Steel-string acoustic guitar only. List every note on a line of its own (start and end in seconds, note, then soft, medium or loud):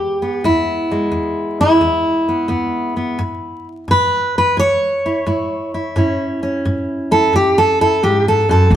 0.00 0.40 E2 medium
0.00 0.90 G#3 medium
0.00 0.21 B3 soft
0.00 0.45 G4 medium
0.22 2.27 B3 soft
0.44 1.09 E2 medium
0.44 1.59 E4 medium
0.91 3.20 G#3 soft
1.12 1.77 E2 medium
1.61 3.66 E4 medium
1.81 2.46 E2 medium
2.29 2.48 B3 soft
2.48 3.14 E2 medium
2.48 2.95 B3 soft
2.97 3.19 B3 soft
3.19 3.83 A2 medium
3.88 4.52 A2 medium
3.88 4.36 B4 loud
4.38 4.59 B4 medium
4.57 5.21 A2 medium
4.57 6.65 C#5 loud
5.06 5.27 E4 soft
5.26 5.91 A2 medium
5.26 5.74 E4 soft
5.74 5.98 E4 soft
5.96 6.60 A2 medium
5.96 6.42 C#4 soft
5.96 7.11 E4 medium
6.43 8.68 C#4 soft
6.65 7.29 A2 medium
7.11 7.35 E4 soft
7.11 7.34 A4 loud
7.33 7.97 A2 medium
7.33 7.57 G4 loud
7.58 7.80 A4 loud
7.81 8.03 E4 medium
7.81 8.03 A4 loud
8.03 8.48 G#2 medium
8.03 8.25 G4 medium
8.28 8.49 A4 medium
8.49 8.71 F#2 medium
8.49 8.72 A4 medium
8.71 8.76 E2 medium